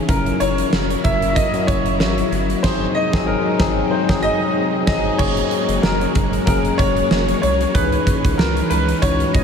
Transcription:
Already playing: string machine C#3, tine electric piano D#3 E3 C#4 D#4 G#4 A#4
0.09 analog synth bass F#1, tine electric piano F#3 C#4 E4 A4, string machine F#3 A#3 E4, grand piano A#4, kick, closed hi-hat
0.16 tine electric piano A#4
0.26 closed hi-hat
0.40 analog synth bass F#1, grand piano C#5, closed hi-hat
0.58 closed hi-hat
0.73 analog synth bass F#1, snare
0.90 closed hi-hat
1.04 analog synth bass F#1, tine electric piano F#3 C#4 E4 A#4, grand piano E5, kick, closed hi-hat
1.22 closed hi-hat
1.29 grand piano E5
1.35 grand piano D#5, kick, closed hi-hat
1.53 tine electric piano F#3 C#4 E4 F#4, closed hi-hat
1.61 grand piano D#5
1.67 analog synth bass F#1, grand piano C#5, kick, closed hi-hat
1.86 closed hi-hat
2.00 analog synth bass G#1, snare
2.18 closed hi-hat
2.32 analog synth bass G1, closed hi-hat
2.50 closed hi-hat
2.63 analog synth bass G#1, string machine C3 G#3 D#4, tine electric piano F#3 C4 D#4 G#4, grand piano C5, kick, snare, crash
2.95 grand piano D#5
3.13 analog synth bass G#1, tine electric piano F#3 C4 D#4 G#4, kick, snare
3.27 grand piano A#4
3.59 analog synth bass G#1, tine electric piano F#3 C4 D#4 G#4, kick, snare
3.91 grand piano C5
4.08 analog synth bass G#1, tine electric piano F#3 C4 D#4 G#4, kick, snare
4.23 grand piano D#5
4.87 analog synth bass G#1, tine electric piano F#3 C4 D#4 G#4, grand piano D#5, kick, snare, crash
5.18 analog synth bass F#1, tine electric piano F#3 A#3 C#4 G#4, string machine G#3 A#3 C#4 F#4, grand piano C#5, kick, crash
5.37 closed hi-hat
5.51 closed hi-hat
5.68 analog synth bass F#1, closed hi-hat
5.82 analog synth bass F#1, grand piano A#4, snare
6.01 closed hi-hat
6.15 analog synth bass F#1, kick, closed hi-hat
6.33 closed hi-hat
6.46 analog synth bass F#1, tine electric piano F#3 A#3 C#4 G#4, grand piano A#4, kick, closed hi-hat
6.65 closed hi-hat
6.78 analog synth bass F#1, grand piano C#5, kick, closed hi-hat
6.97 closed hi-hat
7.11 analog synth bass F#1, snare
7.28 closed hi-hat
7.42 analog synth bass C2, grand piano C#5, closed hi-hat
7.61 closed hi-hat
7.74 analog synth bass C#2, tine electric piano E3 C#4 D#4 G#4, string machine E3 D#4, grand piano B4, kick, closed hi-hat
7.92 closed hi-hat
8.07 kick, closed hi-hat
8.25 analog synth bass C#2, kick, closed hi-hat
8.38 analog synth bass C#2, grand piano A#4, snare
8.57 closed hi-hat
8.70 analog synth bass C#2, grand piano B4, closed hi-hat
8.89 closed hi-hat
9.02 analog synth bass C#2, tine electric piano E3 C#4 D#4 F#4, grand piano C#5, kick, closed hi-hat
9.20 closed hi-hat
9.33 analog synth bass C#2, grand piano D#5, kick, closed hi-hat

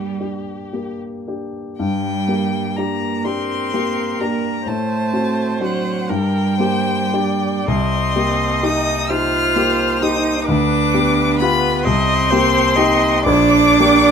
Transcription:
Already playing: grand piano G2 A#3 D4 G4, cello G3, violin G4
0.20 grand piano D4 G4
0.73 grand piano A#3 G4
1.28 grand piano D4 G4
1.78 grand piano G2, cello G3, violin G5
2.28 grand piano A#3 G4
2.77 cello A#3, grand piano D4 G4, violin A#5
3.24 cello C4, grand piano D4 G4, viola A#4, violin C6
3.74 grand piano A#3 G4
4.21 cello A#3, grand piano D4 G4, violin A#5
4.66 grand piano A2, cello A3, viola C5, violin A5
5.13 grand piano C4 F#4
5.60 cello F#3, grand piano D4 F#4, violin F#5
6.09 grand piano G2, cello G3, viola A#4, violin G5
6.59 grand piano A#3 G4, viola C5
7.14 grand piano D4 G4, viola D5
7.67 grand piano C2, cello C4, viola D#5, violin C6
8.16 grand piano A#3 G4
8.63 grand piano D#4 G4, cello D#4, violin D#6
9.10 grand piano D#4 G4, cello F4, viola C5, violin F6
9.56 grand piano A#3 G4
10.02 grand piano D#4 G4, cello D#4, violin D#6
10.46 grand piano D2, cello D4, viola B4, violin D6
10.94 grand piano B3 G4
11.39 cello B3, grand piano F4 G4, violin B5
11.84 grand piano C2, cello C4, viola D#5, violin C6
12.30 grand piano A#3 G4, viola C5
12.75 grand piano D#4 G4, viola D#5
13.25 grand piano A#1, cello D4, viola D5, violin D6
13.80 grand piano A#3 G4

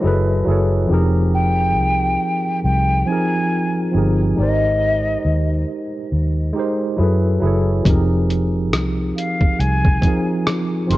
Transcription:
Already playing: flute D#5
0.01 fingered electric bass F#1, tine electric piano F#3 E4 G#4
0.05 tine electric piano A4 B4
0.45 fingered electric bass F#1, tine electric piano F#3 E4 G#4
0.50 tine electric piano A4 C#5
0.87 fingered electric bass F1, tine electric piano F3 C4 D#4 G4
0.92 tine electric piano G#4 A#4
1.34 flute G5
1.77 fingered electric bass C2
2.64 fingered electric bass C2, flute G5
3.06 tine electric piano F3 C4 D#4, flute G#5
3.10 tine electric piano F4 G#4 A#4
3.91 fingered electric bass G1, tine electric piano F3 C4 D#4
3.96 tine electric piano G4 G#4 A#4
4.36 fingered electric bass G#1, tine electric piano G#3 D#4 G4, flute D#5
4.41 tine electric piano A#4 C5
5.25 fingered electric bass D#2
6.12 fingered electric bass D#2
6.53 tine electric piano G#3 D#4 G4
6.57 tine electric piano A#4 C5
6.97 fingered electric bass F#2, tine electric piano F#3 E4 G#4
7.01 tine electric piano A4 B4
7.40 fingered electric bass F#1, tine electric piano F#3 E4 G#4
7.45 tine electric piano A4 C#5
7.83 fingered electric bass F1, tine electric piano F3 C4 D#4 G4, kick, closed hi-hat
7.89 tine electric piano G#4 A#4
8.30 closed hi-hat
8.73 fingered electric bass C2, cross-stick, closed hi-hat
9.17 flute F5, closed hi-hat
9.41 kick
9.59 fingered electric bass C2, flute G#5, closed hi-hat
9.85 kick
10.01 tine electric piano F3 C4 D#4 F4, kick, closed hi-hat
10.07 tine electric piano G#4 A#4
10.47 cross-stick, closed hi-hat
10.87 fingered electric bass G1, tine electric piano F3 C4 D#4, flute C6, closed hi-hat
10.91 tine electric piano G4 G#4 A#4

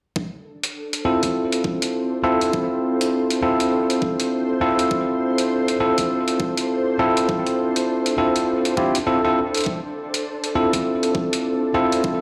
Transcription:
0.16 ambient pad D4, kick
0.23 ambient pad A4
0.64 closed hi-hat
0.82 ambient pad C5
0.93 closed hi-hat
1.05 tine electric piano C4 E4 F4 A4
1.23 kick, closed hi-hat
1.52 closed hi-hat
1.64 kick
1.82 closed hi-hat
2.24 tine electric piano C4 E4 F4 A4
2.41 closed hi-hat
2.53 kick
3.01 closed hi-hat
3.30 closed hi-hat
3.43 tine electric piano C4 E4 F4 A4
3.60 closed hi-hat
3.90 closed hi-hat
4.02 kick
4.20 closed hi-hat
4.61 tine electric piano C4 E4 F4 A4
4.79 closed hi-hat
4.91 kick
5.38 closed hi-hat
5.68 closed hi-hat
5.80 tine electric piano C4 E4 F4 A4
5.98 kick, closed hi-hat
6.28 closed hi-hat
6.40 kick
6.57 closed hi-hat
6.99 tine electric piano C4 E4 F4 A4
7.17 closed hi-hat
7.29 kick
7.47 closed hi-hat
7.76 closed hi-hat
8.06 closed hi-hat
8.18 tine electric piano C4 E4 F4 A4
8.36 closed hi-hat
8.65 closed hi-hat
8.77 tine electric piano C4 E4 F4 G4, kick
8.95 closed hi-hat
9.07 tine electric piano C4 E4 F4 A4
9.25 tine electric piano C4 E4 F4 A4
9.54 closed hi-hat
9.57 closed hi-hat
9.61 closed hi-hat
9.64 kick, closed hi-hat
10.14 closed hi-hat
10.44 closed hi-hat
10.55 tine electric piano C4 E4 F4 A4
10.73 kick, closed hi-hat
11.03 closed hi-hat
11.15 kick
11.33 closed hi-hat
11.74 tine electric piano C4 E4 F4 A4
11.92 closed hi-hat
12.04 kick

